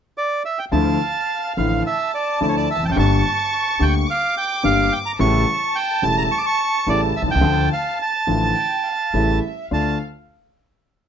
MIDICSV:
0, 0, Header, 1, 5, 480
1, 0, Start_track
1, 0, Key_signature, -1, "minor"
1, 0, Tempo, 559180
1, 616, Time_signature, 4, 2, 24, 8
1, 5895, Tempo, 564972
1, 9478, End_track
2, 0, Start_track
2, 0, Title_t, "Violin section"
2, 0, Program_c, 0, 48
2, 617, Note_on_c, 0, 77, 77
2, 1550, Note_off_c, 0, 77, 0
2, 1585, Note_on_c, 0, 81, 87
2, 2513, Note_off_c, 0, 81, 0
2, 2546, Note_on_c, 0, 85, 90
2, 3502, Note_off_c, 0, 85, 0
2, 3505, Note_on_c, 0, 86, 89
2, 4457, Note_on_c, 0, 81, 94
2, 4461, Note_off_c, 0, 86, 0
2, 6361, Note_off_c, 0, 81, 0
2, 6371, Note_on_c, 0, 81, 83
2, 7299, Note_off_c, 0, 81, 0
2, 7335, Note_on_c, 0, 79, 70
2, 7576, Note_off_c, 0, 79, 0
2, 7577, Note_on_c, 0, 77, 61
2, 7819, Note_on_c, 0, 76, 55
2, 7821, Note_off_c, 0, 77, 0
2, 8308, Note_off_c, 0, 76, 0
2, 8308, Note_on_c, 0, 77, 62
2, 8532, Note_off_c, 0, 77, 0
2, 9478, End_track
3, 0, Start_track
3, 0, Title_t, "Bandoneon"
3, 0, Program_c, 1, 23
3, 152, Note_on_c, 1, 74, 72
3, 367, Note_off_c, 1, 74, 0
3, 388, Note_on_c, 1, 76, 62
3, 504, Note_on_c, 1, 79, 66
3, 506, Note_off_c, 1, 76, 0
3, 557, Note_off_c, 1, 79, 0
3, 620, Note_on_c, 1, 81, 80
3, 1311, Note_off_c, 1, 81, 0
3, 1350, Note_on_c, 1, 77, 64
3, 1571, Note_off_c, 1, 77, 0
3, 1603, Note_on_c, 1, 76, 75
3, 1818, Note_off_c, 1, 76, 0
3, 1841, Note_on_c, 1, 74, 68
3, 2057, Note_off_c, 1, 74, 0
3, 2084, Note_on_c, 1, 74, 69
3, 2107, Note_off_c, 1, 74, 0
3, 2136, Note_on_c, 1, 73, 61
3, 2191, Note_off_c, 1, 73, 0
3, 2205, Note_on_c, 1, 74, 64
3, 2308, Note_off_c, 1, 74, 0
3, 2322, Note_on_c, 1, 76, 66
3, 2438, Note_off_c, 1, 76, 0
3, 2449, Note_on_c, 1, 79, 71
3, 2459, Note_off_c, 1, 79, 0
3, 2469, Note_on_c, 1, 81, 58
3, 2493, Note_off_c, 1, 81, 0
3, 2501, Note_on_c, 1, 79, 69
3, 2550, Note_off_c, 1, 79, 0
3, 2568, Note_on_c, 1, 81, 83
3, 3282, Note_on_c, 1, 79, 76
3, 3295, Note_off_c, 1, 81, 0
3, 3385, Note_off_c, 1, 79, 0
3, 3523, Note_on_c, 1, 77, 81
3, 3735, Note_off_c, 1, 77, 0
3, 3756, Note_on_c, 1, 79, 79
3, 3972, Note_off_c, 1, 79, 0
3, 3989, Note_on_c, 1, 77, 82
3, 4228, Note_on_c, 1, 79, 81
3, 4232, Note_off_c, 1, 77, 0
3, 4280, Note_off_c, 1, 79, 0
3, 4342, Note_on_c, 1, 82, 85
3, 4395, Note_off_c, 1, 82, 0
3, 4464, Note_on_c, 1, 85, 94
3, 4939, Note_on_c, 1, 79, 85
3, 4953, Note_off_c, 1, 85, 0
3, 5180, Note_on_c, 1, 81, 87
3, 5184, Note_off_c, 1, 79, 0
3, 5289, Note_off_c, 1, 81, 0
3, 5301, Note_on_c, 1, 82, 79
3, 5354, Note_off_c, 1, 82, 0
3, 5421, Note_on_c, 1, 85, 95
3, 5476, Note_on_c, 1, 86, 81
3, 5479, Note_off_c, 1, 85, 0
3, 5535, Note_off_c, 1, 86, 0
3, 5547, Note_on_c, 1, 85, 99
3, 5911, Note_off_c, 1, 85, 0
3, 5914, Note_on_c, 1, 74, 76
3, 6017, Note_off_c, 1, 74, 0
3, 6147, Note_on_c, 1, 76, 72
3, 6197, Note_off_c, 1, 76, 0
3, 6270, Note_on_c, 1, 79, 89
3, 6596, Note_off_c, 1, 79, 0
3, 6628, Note_on_c, 1, 77, 69
3, 6844, Note_off_c, 1, 77, 0
3, 6874, Note_on_c, 1, 81, 78
3, 8042, Note_off_c, 1, 81, 0
3, 8329, Note_on_c, 1, 81, 65
3, 8543, Note_off_c, 1, 81, 0
3, 9478, End_track
4, 0, Start_track
4, 0, Title_t, "Grand piano"
4, 0, Program_c, 2, 0
4, 614, Note_on_c, 2, 53, 53
4, 615, Note_on_c, 2, 50, 59
4, 617, Note_on_c, 2, 38, 64
4, 618, Note_on_c, 2, 64, 63
4, 620, Note_on_c, 2, 57, 46
4, 819, Note_off_c, 2, 53, 0
4, 820, Note_off_c, 2, 38, 0
4, 821, Note_off_c, 2, 64, 0
4, 822, Note_off_c, 2, 50, 0
4, 822, Note_off_c, 2, 57, 0
4, 1349, Note_on_c, 2, 33, 50
4, 1349, Note_on_c, 2, 50, 44
4, 1349, Note_on_c, 2, 53, 37
4, 1351, Note_on_c, 2, 57, 37
4, 1352, Note_on_c, 2, 45, 47
4, 1352, Note_on_c, 2, 64, 44
4, 1548, Note_off_c, 2, 33, 0
4, 1548, Note_off_c, 2, 50, 0
4, 1548, Note_off_c, 2, 53, 0
4, 1549, Note_off_c, 2, 57, 0
4, 1550, Note_off_c, 2, 45, 0
4, 1550, Note_off_c, 2, 64, 0
4, 2065, Note_on_c, 2, 50, 51
4, 2066, Note_on_c, 2, 53, 40
4, 2068, Note_on_c, 2, 38, 51
4, 2068, Note_on_c, 2, 57, 40
4, 2069, Note_on_c, 2, 64, 51
4, 2268, Note_off_c, 2, 53, 0
4, 2269, Note_off_c, 2, 38, 0
4, 2269, Note_off_c, 2, 57, 0
4, 2270, Note_off_c, 2, 50, 0
4, 2270, Note_off_c, 2, 64, 0
4, 2369, Note_on_c, 2, 40, 45
4, 2428, Note_off_c, 2, 40, 0
4, 2428, Note_on_c, 2, 41, 47
4, 2483, Note_on_c, 2, 42, 61
4, 2487, Note_off_c, 2, 41, 0
4, 2540, Note_on_c, 2, 50, 59
4, 2544, Note_on_c, 2, 31, 67
4, 2544, Note_on_c, 2, 55, 58
4, 2544, Note_on_c, 2, 67, 64
4, 2545, Note_off_c, 2, 42, 0
4, 2545, Note_on_c, 2, 43, 66
4, 2545, Note_on_c, 2, 58, 51
4, 2744, Note_off_c, 2, 50, 0
4, 2746, Note_off_c, 2, 31, 0
4, 2746, Note_off_c, 2, 55, 0
4, 2747, Note_off_c, 2, 43, 0
4, 2747, Note_off_c, 2, 58, 0
4, 2747, Note_off_c, 2, 67, 0
4, 3256, Note_on_c, 2, 50, 48
4, 3257, Note_on_c, 2, 38, 48
4, 3258, Note_on_c, 2, 58, 35
4, 3260, Note_on_c, 2, 55, 40
4, 3264, Note_on_c, 2, 67, 50
4, 3460, Note_off_c, 2, 38, 0
4, 3461, Note_off_c, 2, 50, 0
4, 3461, Note_off_c, 2, 58, 0
4, 3462, Note_off_c, 2, 55, 0
4, 3464, Note_off_c, 2, 67, 0
4, 3978, Note_on_c, 2, 31, 51
4, 3978, Note_on_c, 2, 50, 47
4, 3978, Note_on_c, 2, 55, 38
4, 3978, Note_on_c, 2, 58, 41
4, 3979, Note_on_c, 2, 43, 54
4, 3983, Note_on_c, 2, 67, 50
4, 4181, Note_off_c, 2, 31, 0
4, 4181, Note_off_c, 2, 50, 0
4, 4181, Note_off_c, 2, 55, 0
4, 4181, Note_off_c, 2, 58, 0
4, 4182, Note_off_c, 2, 43, 0
4, 4184, Note_off_c, 2, 67, 0
4, 4457, Note_on_c, 2, 49, 67
4, 4457, Note_on_c, 2, 55, 55
4, 4458, Note_on_c, 2, 33, 68
4, 4459, Note_on_c, 2, 45, 76
4, 4459, Note_on_c, 2, 57, 53
4, 4460, Note_on_c, 2, 64, 67
4, 4658, Note_off_c, 2, 49, 0
4, 4658, Note_off_c, 2, 55, 0
4, 4659, Note_off_c, 2, 33, 0
4, 4659, Note_off_c, 2, 45, 0
4, 4659, Note_off_c, 2, 57, 0
4, 4660, Note_off_c, 2, 64, 0
4, 5171, Note_on_c, 2, 28, 47
4, 5174, Note_on_c, 2, 40, 51
4, 5174, Note_on_c, 2, 49, 42
4, 5176, Note_on_c, 2, 55, 42
4, 5176, Note_on_c, 2, 57, 43
4, 5178, Note_on_c, 2, 64, 48
4, 5374, Note_off_c, 2, 28, 0
4, 5375, Note_off_c, 2, 40, 0
4, 5375, Note_off_c, 2, 49, 0
4, 5376, Note_off_c, 2, 55, 0
4, 5376, Note_off_c, 2, 57, 0
4, 5377, Note_off_c, 2, 64, 0
4, 5894, Note_on_c, 2, 33, 54
4, 5894, Note_on_c, 2, 49, 49
4, 5896, Note_on_c, 2, 55, 45
4, 5898, Note_on_c, 2, 45, 52
4, 5898, Note_on_c, 2, 57, 43
4, 5898, Note_on_c, 2, 64, 52
4, 6095, Note_off_c, 2, 33, 0
4, 6095, Note_off_c, 2, 49, 0
4, 6096, Note_off_c, 2, 55, 0
4, 6097, Note_off_c, 2, 45, 0
4, 6097, Note_off_c, 2, 57, 0
4, 6097, Note_off_c, 2, 64, 0
4, 6195, Note_on_c, 2, 35, 50
4, 6244, Note_on_c, 2, 36, 58
4, 6254, Note_off_c, 2, 35, 0
4, 6305, Note_on_c, 2, 37, 66
4, 6308, Note_off_c, 2, 36, 0
4, 6357, Note_on_c, 2, 50, 72
4, 6357, Note_on_c, 2, 53, 54
4, 6358, Note_on_c, 2, 38, 75
4, 6358, Note_on_c, 2, 57, 57
4, 6360, Note_on_c, 2, 65, 71
4, 6368, Note_off_c, 2, 37, 0
4, 6566, Note_off_c, 2, 53, 0
4, 6566, Note_off_c, 2, 57, 0
4, 6567, Note_off_c, 2, 38, 0
4, 6568, Note_off_c, 2, 50, 0
4, 6568, Note_off_c, 2, 65, 0
4, 7085, Note_on_c, 2, 53, 39
4, 7086, Note_on_c, 2, 45, 50
4, 7086, Note_on_c, 2, 50, 42
4, 7088, Note_on_c, 2, 57, 39
4, 7089, Note_on_c, 2, 33, 49
4, 7091, Note_on_c, 2, 65, 43
4, 7291, Note_off_c, 2, 53, 0
4, 7292, Note_off_c, 2, 45, 0
4, 7292, Note_off_c, 2, 50, 0
4, 7293, Note_off_c, 2, 33, 0
4, 7293, Note_off_c, 2, 57, 0
4, 7294, Note_off_c, 2, 65, 0
4, 7822, Note_on_c, 2, 55, 42
4, 7823, Note_on_c, 2, 33, 50
4, 7823, Note_on_c, 2, 45, 50
4, 7823, Note_on_c, 2, 49, 39
4, 7825, Note_on_c, 2, 57, 41
4, 7826, Note_on_c, 2, 64, 52
4, 8027, Note_off_c, 2, 55, 0
4, 8028, Note_off_c, 2, 33, 0
4, 8028, Note_off_c, 2, 45, 0
4, 8028, Note_off_c, 2, 49, 0
4, 8028, Note_off_c, 2, 57, 0
4, 8029, Note_off_c, 2, 64, 0
4, 8312, Note_on_c, 2, 38, 43
4, 8312, Note_on_c, 2, 57, 42
4, 8312, Note_on_c, 2, 65, 50
4, 8314, Note_on_c, 2, 62, 43
4, 8512, Note_off_c, 2, 38, 0
4, 8512, Note_off_c, 2, 57, 0
4, 8512, Note_off_c, 2, 65, 0
4, 8513, Note_off_c, 2, 62, 0
4, 9478, End_track
5, 0, Start_track
5, 0, Title_t, "Upright bass"
5, 0, Program_c, 3, 32
5, 619, Note_on_c, 3, 38, 78
5, 821, Note_off_c, 3, 38, 0
5, 1349, Note_on_c, 3, 33, 55
5, 1548, Note_off_c, 3, 33, 0
5, 2070, Note_on_c, 3, 38, 53
5, 2270, Note_off_c, 3, 38, 0
5, 2375, Note_on_c, 3, 28, 38
5, 2428, Note_off_c, 3, 28, 0
5, 2434, Note_on_c, 3, 29, 49
5, 2487, Note_off_c, 3, 29, 0
5, 2492, Note_on_c, 3, 30, 63
5, 2543, Note_off_c, 3, 30, 0
5, 2549, Note_on_c, 3, 31, 78
5, 2749, Note_off_c, 3, 31, 0
5, 3266, Note_on_c, 3, 38, 57
5, 3465, Note_off_c, 3, 38, 0
5, 3985, Note_on_c, 3, 31, 50
5, 4185, Note_off_c, 3, 31, 0
5, 4458, Note_on_c, 3, 33, 80
5, 4659, Note_off_c, 3, 33, 0
5, 5170, Note_on_c, 3, 28, 56
5, 5373, Note_off_c, 3, 28, 0
5, 5894, Note_on_c, 3, 33, 52
5, 6095, Note_off_c, 3, 33, 0
5, 6194, Note_on_c, 3, 35, 47
5, 6249, Note_off_c, 3, 35, 0
5, 6254, Note_on_c, 3, 36, 53
5, 6303, Note_off_c, 3, 36, 0
5, 6308, Note_on_c, 3, 37, 63
5, 6361, Note_off_c, 3, 37, 0
5, 6366, Note_on_c, 3, 38, 86
5, 6571, Note_off_c, 3, 38, 0
5, 7089, Note_on_c, 3, 33, 53
5, 7293, Note_off_c, 3, 33, 0
5, 7820, Note_on_c, 3, 33, 49
5, 8026, Note_off_c, 3, 33, 0
5, 8311, Note_on_c, 3, 38, 44
5, 8511, Note_off_c, 3, 38, 0
5, 9478, End_track
0, 0, End_of_file